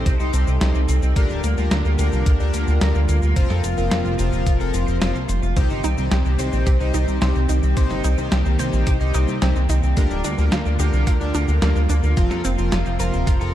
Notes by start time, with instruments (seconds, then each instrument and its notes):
Already playing: analog polysynth C3 D#4 G4 C5, supersaw synth C3 G3 D#4 A4
0.06 analog synth bass C2, overdriven electric guitar C4, kick, closed hi-hat, cabasa
0.20 analog synth bass C2, analog polysynth C3 D#4 G4 C5, overdriven electric guitar D#4, cabasa
0.33 analog synth bass C2, overdriven electric guitar C4, closed hi-hat, cabasa
0.47 analog synth bass C2, overdriven electric guitar C4, cabasa
0.61 analog synth bass C2, analog polysynth C3 D#4 G4 C5, overdriven electric guitar C5, snare, closed hi-hat, cabasa
0.75 analog synth bass C2, overdriven electric guitar C4, cabasa
0.89 analog synth bass C2, overdriven electric guitar C4, closed hi-hat, cabasa
1.02 analog synth bass C2, overdriven electric guitar C4, cabasa
1.16 analog synth bass D2, analog polysynth D3 D4 G4 A#4, supersaw synth D3 G3 A#3 F4, overdriven electric guitar A#3, kick, closed hi-hat, cabasa
1.30 analog synth bass D1, overdriven electric guitar D4, cabasa
1.44 analog synth bass D2, overdriven electric guitar A#3, closed hi-hat, cabasa
1.57 analog synth bass D2, analog polysynth D3 D4 G4 A#4, overdriven electric guitar A#3, cabasa
1.71 analog synth bass D2, overdriven electric guitar A#4, snare, closed hi-hat, cabasa
1.85 analog synth bass D2, overdriven electric guitar A#3, cabasa
1.99 analog synth bass D2, analog polysynth D3 D4 G4 A#4, overdriven electric guitar A#3, closed hi-hat, cabasa
2.12 analog synth bass C2, overdriven electric guitar A#3, cabasa
2.26 analog synth bass D2, overdriven electric guitar A#3, kick, closed hi-hat, cabasa
2.40 analog synth bass D2, analog polysynth D3 D4 G4 A#4, overdriven electric guitar D4, cabasa
2.54 analog synth bass D2, overdriven electric guitar A#3, closed hi-hat, cabasa
2.67 analog synth bass D2, overdriven electric guitar A#3, cabasa
2.81 analog synth bass D2, analog polysynth D3 D4 G4 A#4, overdriven electric guitar A#4, snare, closed hi-hat, cabasa
2.95 analog synth bass D2, overdriven electric guitar A#3, cabasa
3.09 analog synth bass D2, overdriven electric guitar A#3, closed hi-hat, cabasa
3.23 analog synth bass D2, overdriven electric guitar A#3, cabasa
3.36 analog synth bass F1, supersaw synth C3 F3, analog polysynth F3 C4 F4 A#4, overdriven electric guitar F4, kick, closed hi-hat, cabasa
3.50 analog synth bass F2, overdriven electric guitar A4, snare, cabasa
3.64 analog synth bass F1, overdriven electric guitar F4, closed hi-hat, cabasa
3.78 analog synth bass F1, analog polysynth F3 C4 F4 A#4, overdriven electric guitar F4, cabasa
3.91 analog synth bass F1, overdriven electric guitar F5, snare, closed hi-hat, cabasa
4.05 analog synth bass F1, overdriven electric guitar F4, cabasa
4.19 analog synth bass F1, analog polysynth F3 C4 F4 A#4, overdriven electric guitar F4, closed hi-hat, cabasa
4.33 analog synth bass D#1, overdriven electric guitar F4, cabasa
4.46 analog synth bass F1, overdriven electric guitar F4, kick, closed hi-hat, cabasa
4.60 analog synth bass F1, analog polysynth F3 C4 F4 A#4, overdriven electric guitar A4, cabasa
4.74 analog synth bass F1, overdriven electric guitar F4, closed hi-hat, cabasa
4.88 analog synth bass F1, overdriven electric guitar C5, cabasa
5.01 analog synth bass F1, analog polysynth F3 C4 F4 A#4, overdriven electric guitar F4, snare, closed hi-hat, cabasa
5.15 analog synth bass C2, overdriven electric guitar C5, cabasa
5.29 analog synth bass F1, overdriven electric guitar C5, closed hi-hat, cabasa
5.43 analog synth bass F1, overdriven electric guitar F4, cabasa
5.57 analog synth bass C2, analog polysynth C3 D#4 G4 C5, supersaw synth D#3 G3 C4 G4, overdriven electric guitar C4, synth arpeggio sound C4, kick, closed hi-hat, cabasa
5.70 analog synth bass G1, overdriven electric guitar D#4, cabasa
5.84 analog synth bass C2, overdriven electric guitar C4, synth arpeggio sound D#4, closed hi-hat, cabasa
5.98 analog synth bass C2, analog polysynth C3 D#4 G4 C5, overdriven electric guitar C4, cabasa
6.12 analog synth bass C2, overdriven electric guitar C4, synth arpeggio sound G4, snare, closed hi-hat, cabasa
6.25 analog synth bass C2, overdriven electric guitar C4, cabasa
6.39 analog synth bass C2, analog polysynth C3 D#4 G4 C5, overdriven electric guitar C4, synth arpeggio sound C5, closed hi-hat, cabasa
6.53 analog synth bass A#1, overdriven electric guitar C4, cabasa
6.67 analog synth bass C2, overdriven electric guitar C4, synth arpeggio sound G4, kick, closed hi-hat, cabasa
6.80 analog synth bass C2, analog polysynth C3 D#4 G4 C5, overdriven electric guitar D#4, cabasa
6.94 analog synth bass C2, overdriven electric guitar C4, synth arpeggio sound D#4, closed hi-hat, cabasa
7.08 analog synth bass C2, overdriven electric guitar C4, cabasa
7.22 analog synth bass C2, analog polysynth C3 D#4 G4 C5, synth arpeggio sound C4, overdriven electric guitar C4, snare, closed hi-hat, cabasa
7.35 analog synth bass C2, overdriven electric guitar C4, cabasa
7.49 analog synth bass C2, overdriven electric guitar C4, synth arpeggio sound D#4, closed hi-hat, cabasa
7.63 analog synth bass C2, overdriven electric guitar C4, cabasa
7.77 analog synth bass C2, analog polysynth C3 D#4 G4 C5, synth arpeggio sound C4, overdriven electric guitar C4, kick, closed hi-hat, cabasa
7.91 analog synth bass G1, overdriven electric guitar D#4, snare, cabasa
8.04 analog synth bass C2, overdriven electric guitar C4, synth arpeggio sound D#4, closed hi-hat, cabasa
8.18 analog synth bass C2, analog polysynth C3 D#4 G4 C5, overdriven electric guitar C4, cabasa
8.32 analog synth bass C2, overdriven electric guitar C4, synth arpeggio sound G4, snare, closed hi-hat, cabasa
8.46 analog synth bass C2, overdriven electric guitar C4, cabasa
8.59 analog synth bass C2, analog polysynth C3 D#4 G4 C5, overdriven electric guitar C4, synth arpeggio sound C5, closed hi-hat, cabasa
8.73 analog synth bass A#1, overdriven electric guitar C4, cabasa
8.87 analog synth bass C2, overdriven electric guitar C4, synth arpeggio sound G4, kick, closed hi-hat, cabasa
9.01 analog synth bass C2, analog polysynth C3 D#4 G4 C5, overdriven electric guitar D#4, cabasa
9.14 analog synth bass C2, overdriven electric guitar C4, synth arpeggio sound D#4, closed hi-hat, cabasa
9.28 analog synth bass C2, overdriven electric guitar C4, cabasa
9.42 analog synth bass C2, analog polysynth C3 D#4 G4 C5, synth arpeggio sound C4, overdriven electric guitar C4, snare, closed hi-hat, cabasa
9.56 analog synth bass C2, overdriven electric guitar C4, cabasa
9.69 analog synth bass C2, overdriven electric guitar C4, synth arpeggio sound D#4, closed hi-hat, cabasa
9.83 analog synth bass C2, overdriven electric guitar C4, cabasa
9.97 analog synth bass D2, analog polysynth D3 D4 G4 A#4, overdriven electric guitar A#3, synth arpeggio sound A#3, supersaw synth F4, kick, closed hi-hat, cabasa
10.11 analog synth bass D1, overdriven electric guitar D4, cabasa
10.24 analog synth bass D2, overdriven electric guitar A#3, synth arpeggio sound D4, closed hi-hat, cabasa
10.38 analog synth bass D2, analog polysynth D3 D4 G4 A#4, overdriven electric guitar A#3, cabasa
10.52 analog synth bass D2, overdriven electric guitar A#3, synth arpeggio sound F4, snare, closed hi-hat, cabasa
10.66 analog synth bass D2, overdriven electric guitar A#3, cabasa
10.79 analog synth bass D2, analog polysynth D3 D4 G4 A#4, overdriven electric guitar A#3, synth arpeggio sound G4, closed hi-hat, cabasa
10.93 analog synth bass C2, overdriven electric guitar A#3, cabasa
11.07 analog synth bass D2, overdriven electric guitar A#3, synth arpeggio sound F4, kick, closed hi-hat, cabasa
11.21 analog synth bass D2, analog polysynth D3 D4 G4 A#4, overdriven electric guitar D4, cabasa
11.35 analog synth bass D2, overdriven electric guitar A#3, synth arpeggio sound D4, closed hi-hat, cabasa
11.48 analog synth bass D2, overdriven electric guitar A#3, cabasa
11.62 analog synth bass D2, analog polysynth D3 D4 G4 A#4, synth arpeggio sound A#3, overdriven electric guitar A#3, snare, closed hi-hat, cabasa
11.76 analog synth bass D2, overdriven electric guitar A#3, cabasa
11.90 analog synth bass D2, overdriven electric guitar A#3, synth arpeggio sound D4, closed hi-hat, cabasa
12.03 analog synth bass D2, overdriven electric guitar A#3, cabasa
12.17 analog synth bass F1, analog polysynth F3 C4 F4 A#4, synth arpeggio sound A#3, overdriven electric guitar F4, kick, closed hi-hat, cabasa
12.31 analog synth bass F2, overdriven electric guitar A4, snare, cabasa
12.45 analog synth bass F1, synth arpeggio sound C4, overdriven electric guitar F4, closed hi-hat, cabasa
12.58 analog synth bass F1, analog polysynth F3 C4 F4 A#4, overdriven electric guitar F4, cabasa
12.72 analog synth bass F1, overdriven electric guitar F4, synth arpeggio sound F4, snare, closed hi-hat, cabasa
12.86 analog synth bass F1, overdriven electric guitar F4, cabasa
13.00 analog synth bass F1, analog polysynth F3 C4 F4 A#4, overdriven electric guitar F4, synth arpeggio sound A#4, closed hi-hat, cabasa
13.13 analog synth bass D#1, overdriven electric guitar F4, cabasa
13.27 analog synth bass F1, overdriven electric guitar F4, synth arpeggio sound F4, kick, closed hi-hat, cabasa
13.41 analog synth bass F1, analog polysynth F3 C4 F4 A#4, overdriven electric guitar A4, cabasa